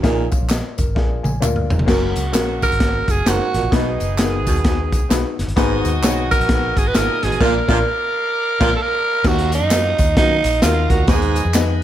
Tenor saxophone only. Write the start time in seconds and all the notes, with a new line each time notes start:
2.63 A#4
3.11 G#4
3.28 F#4
3.75 D#4
6.31 A#4
6.78 G#4
6.87 B4
6.96 A#4
7.24 G#4
7.42 A#4
8.76 A4
8.82 A#4
9.28 F#4
9.55 D#4
10.18 D#4
10.63 F4
10.90 F#4
11.09 G#4